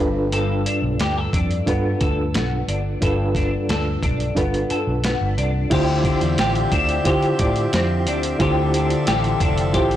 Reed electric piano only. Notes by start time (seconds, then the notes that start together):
Already playing: D4 F4
0.00 A4 B4
1.66 D4 F4 A4 B4
3.01 D4 F4 A4 B4
4.35 D4 F4 A4 B4
5.70 E4 F4 G4 C5
7.04 E4 F4 G4 C5
8.39 E4 F4 G4 C5
9.73 E4 F4 G4 C5